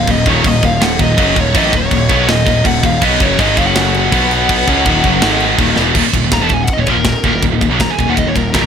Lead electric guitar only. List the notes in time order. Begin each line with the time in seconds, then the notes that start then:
0.10 D#5
0.30 C#5
0.47 D#5
0.65 F5
0.83 F#5
1.01 D#5
1.40 C#5
1.57 D#5
1.77 C#5
2.30 D#5
2.67 F#5
2.85 F5
3.04 D#5
3.22 C#5
3.40 D#5
3.59 F5
3.66 F#5
3.75 F#5
6.33 A#5
6.43 A5
6.53 G#5
6.64 F#5
6.73 D#5
6.80 C#5
6.90 A#4
7.09 A#4
7.81 A#5
7.90 G#5
7.99 G#5
8.10 F#5
8.18 D#5
8.28 C#5
8.36 A#4
8.54 A#4